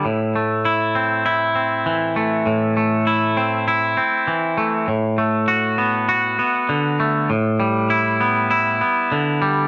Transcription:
X:1
M:4/4
L:1/8
Q:1/4=99
K:Ador
V:1 name="Clean electric guitar"
A,, A, E C E C E, A, | A,, A, E C E C E, A, | A,, A, F B, F B, D, A, | A,, G, E B, E B, D, G, |]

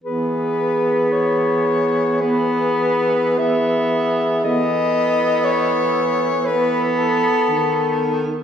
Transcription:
X:1
M:4/4
L:1/16
Q:1/4=59
K:E
V:1 name="Soprano saxophone"
B4 c4 B4 e4 | d4 c4 B2 A4- A z |]
V:2 name="Clarinet"
G8 G4 G4 | A8 A6- A z |]
V:3 name="Tenor saxophone"
B,8 B,4 B,4 | B,8 B,6- B, z |]
V:4 name="Baritone saxophone" clef=bass
E,16 | E,8- E,3 z D,4 |]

